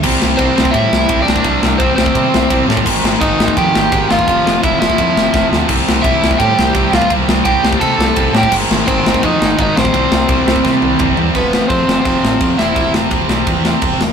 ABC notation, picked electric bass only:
X:1
M:4/4
L:1/8
Q:1/4=170
K:Flyd
V:1 name="Picked electric bass" clef=bass
C,, C,, C,, C,, A,, C,, C,, C,, | C,, C,, C,, C,, C, C,, C,, A,, | _A,,, A,,, A,,, A,,, F,, A,,, A,,, A,,, | F,,, F,,, F,,, F,,, F,, F,,, F,,, D,, |
C,, C,, C,, C,, A,, C,, C,, C,, | C,, C,, C,, C,, C, C,, C,, A,, | _A,,, A,,, A,,, A,,, F,, A,,, A,,, _B,,, | C,, C,, C,, C,, C, C,, C,, E,, |
F,,,2 F,, F,,, F,,, A,,, F,, E,,, | E,,, E,,, E,,, B,,, E,,2 E,,,2 |]